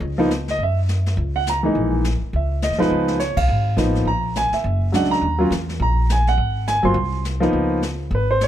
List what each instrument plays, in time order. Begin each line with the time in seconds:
0.00 upright bass C#2, brush sweep
0.18 grand piano F3 A#3 B3 D#4
0.30 snare, hi-hat pedal
0.48 grand piano D#5, snare
0.58 upright bass F#2, brush sweep
0.63 grand piano E5
0.88 snare, hi-hat pedal
1.06 snare
1.17 upright bass C#2, brush sweep
1.36 grand piano F#5
1.47 grand piano A#5, snare, hi-hat pedal
1.63 grand piano E3 G#3 A#3 D#4
1.75 upright bass A#1, brush sweep
2.04 snare, hi-hat pedal
2.21 muted upright bass stroke
2.33 upright bass C#2, grand piano E5, brush sweep
2.62 grand piano D#5, snare, hi-hat pedal
2.70 upright bass D#2, snare
2.78 upright bass C2, grand piano F3 G#3 B3 D#4 B4, snare
2.90 upright bass C#2, brush sweep
3.08 snare
3.19 grand piano C#5, snare, hi-hat pedal
3.37 upright bass B1, grand piano F5, kick, ride
3.48 upright bass G#1, brush sweep
3.77 upright bass A1, grand piano F3 A#3 B3 D#4, snare, hi-hat pedal
3.95 snare
4.05 upright bass A#1, grand piano A#5, brush sweep
4.35 grand piano G#5, snare, hi-hat pedal
4.51 grand piano E5, muted upright bass stroke, snare
4.64 upright bass F#1, brush sweep
4.92 upright bass C#2, grand piano F#3 G#3 C#4 D4 F#5, snare, hi-hat pedal
5.04 snare
5.11 grand piano A#5, snare
5.22 upright bass D#2, brush sweep
5.38 grand piano F#3 A#3 C#4 F4
5.51 upright bass E2, snare, hi-hat pedal
5.69 snare
5.79 upright bass A#1, grand piano A#5, brush sweep
6.09 grand piano G#5, snare, hi-hat pedal
6.27 grand piano F#5, snare
6.37 upright bass G#1, brush sweep
6.67 grand piano G#5, snare, hi-hat pedal
6.83 upright bass G1, grand piano F#3 A#3 C4 F4 C6
6.94 upright bass C2, brush sweep
7.25 snare, hi-hat pedal
7.40 grand piano F3 A#3 B3 D#4, snare
7.53 upright bass C#2, brush sweep
7.82 snare, hi-hat pedal
8.11 upright bass G#1, brush sweep
8.15 grand piano B4
8.31 grand piano C5
8.41 grand piano C#5, snare, hi-hat pedal